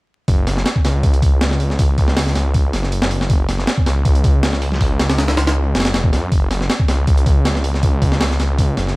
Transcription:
0.28 F#1, kick, open hi-hat
0.47 snare, open hi-hat
0.57 snare
0.66 snare, open hi-hat
0.76 kick
0.85 C#2, snare, open hi-hat
1.03 kick, open hi-hat
1.14 closed hi-hat
1.22 kick, open hi-hat
1.41 snare, open hi-hat
1.51 snare
1.60 open hi-hat
1.70 snare
1.79 kick, open hi-hat
1.98 kick, open hi-hat
2.08 snare
2.17 snare, open hi-hat
2.27 snare
2.35 C#2, snare, open hi-hat
2.54 kick, open hi-hat
2.73 F#1, snare, open hi-hat
2.83 snare
2.92 open hi-hat
3.02 snare
3.11 open hi-hat
3.21 snare
3.30 F#1, kick, open hi-hat
3.49 snare, open hi-hat
3.58 snare
3.67 snare, open hi-hat
3.78 kick
3.86 C#2, snare, open hi-hat
4.05 kick, open hi-hat
4.15 closed hi-hat
4.24 kick, open hi-hat
4.43 snare, open hi-hat
4.53 snare
4.62 open hi-hat
4.72 snare
4.81 kick, open hi-hat
4.99 snare, open hi-hat
5.09 snare, open hi-hat
5.18 snare, open hi-hat
5.28 snare, open hi-hat
5.37 C#2, snare, open hi-hat
5.47 snare, open hi-hat
5.75 F#1, snare, open hi-hat
5.80 snare, open hi-hat
5.85 snare, open hi-hat
5.94 E1, snare, open hi-hat
6.04 kick
6.13 F#2, snare, open hi-hat
6.32 F#1, kick, open hi-hat
6.51 snare, open hi-hat
6.61 snare
6.70 snare, open hi-hat
6.80 kick
6.88 C#2, snare, open hi-hat
7.07 kick, open hi-hat
7.17 closed hi-hat
7.26 kick, open hi-hat
7.45 snare, open hi-hat
7.55 snare
7.64 open hi-hat
7.74 snare
7.83 kick, open hi-hat
8.02 kick, open hi-hat
8.12 snare
8.21 snare, open hi-hat
8.31 snare
8.39 C#2, snare, open hi-hat
8.58 kick, open hi-hat
8.77 F#1, snare, open hi-hat
8.87 snare

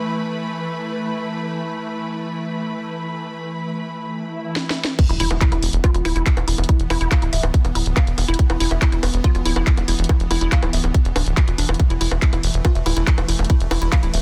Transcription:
Already playing: E3 A3 E4 B4 B5
4.14 swell
4.56 snare
4.70 snare
4.85 snare
4.99 E3 B3, kick, closed hi-hat, crash, high bongo, impact
5.09 E1 E4, closed hi-hat
5.20 E1 E4, open hi-hat
5.31 E1 E5, high bongo
5.41 E4, kick, clap, closed hi-hat
5.52 E1 E4, closed hi-hat, high bongo
5.63 E1, open hi-hat
5.73 E1, closed hi-hat
5.84 F4, kick, closed hi-hat, high bongo
5.94 E1 F4, closed hi-hat
6.05 D1 E4, open hi-hat, high bongo
6.16 E1 E4, closed hi-hat
6.26 kick, clap, closed hi-hat
6.37 E1, closed hi-hat, high bongo
6.48 E1 E4, open hi-hat
6.58 E1, closed hi-hat, high bongo
6.64 closed hi-hat
6.69 E4, kick, closed hi-hat
6.80 E1, closed hi-hat
6.90 E1 E4, open hi-hat, high bongo
7.01 E1 E4, closed hi-hat
7.11 F5, kick, clap, closed hi-hat, high bongo
7.22 D1 E4, closed hi-hat
7.33 D1 E5, open hi-hat
7.43 D1, closed hi-hat, high bongo
7.54 kick, closed hi-hat
7.65 E1, closed hi-hat, high bongo
7.75 D1 E4, open hi-hat
7.86 D1, closed hi-hat
7.97 F5, kick, clap, closed hi-hat, high bongo
8.07 E1, closed hi-hat
8.18 E1, open hi-hat, high bongo
8.28 E1 E4, closed hi-hat
8.34 closed hi-hat
8.39 kick, closed hi-hat
8.50 E1 E4, closed hi-hat, high bongo
8.60 E1 E4, open hi-hat
8.71 E1 E5, closed hi-hat, high bongo
8.82 E4, kick, clap, closed hi-hat
8.92 E1 E4, closed hi-hat
9.03 E1, open hi-hat, high bongo
9.14 E1, closed hi-hat
9.24 F4, kick, closed hi-hat, high bongo
9.35 E1 F4, closed hi-hat
9.45 D1 E4, open hi-hat
9.56 E1 E4, closed hi-hat, high bongo
9.67 kick, clap, closed hi-hat
9.77 E1, closed hi-hat, high bongo
9.88 E1 E4, open hi-hat
9.99 E1, closed hi-hat
10.04 closed hi-hat
10.09 E4, kick, closed hi-hat, high bongo
10.20 E1, closed hi-hat
10.31 E1 E4, open hi-hat, high bongo
10.41 E1 E4, closed hi-hat
10.52 F5, kick, clap, closed hi-hat
10.63 D1 E4, closed hi-hat, high bongo
10.73 D1 E5, open hi-hat
10.84 D1, closed hi-hat, high bongo
10.94 kick, closed hi-hat
11.05 E1, closed hi-hat
11.16 D1 D4, open hi-hat, high bongo
11.26 D1, closed hi-hat
11.37 F4, kick, clap, closed hi-hat, high bongo
11.48 E1 F4, closed hi-hat
11.58 E1 D4, open hi-hat
11.69 E1 E4, closed hi-hat, high bongo
11.74 closed hi-hat
11.80 A3, kick, closed hi-hat, high bongo
11.90 E1 E4, closed hi-hat
12.01 E1 E4, open hi-hat
12.11 E1 E5, closed hi-hat, high bongo
12.22 E4, kick, clap, closed hi-hat
12.33 E1 E4, closed hi-hat, high bongo
12.43 E1, open hi-hat
12.54 E1, closed hi-hat
12.65 F4, kick, closed hi-hat, high bongo
12.75 E1 E5, closed hi-hat
12.86 D1 E4, open hi-hat, high bongo
12.97 E1 E4, closed hi-hat
13.07 kick, clap, closed hi-hat
13.18 E1, closed hi-hat, high bongo
13.28 E1 E4, open hi-hat
13.39 E1, closed hi-hat, high bongo
13.44 closed hi-hat
13.50 E4, kick, closed hi-hat
13.60 E1, closed hi-hat
13.71 E1 E4, open hi-hat, high bongo
13.82 E1 E4, closed hi-hat
13.92 F5, kick, clap, closed hi-hat, high bongo
14.03 D1 E4, closed hi-hat
14.14 D1 E5, open hi-hat

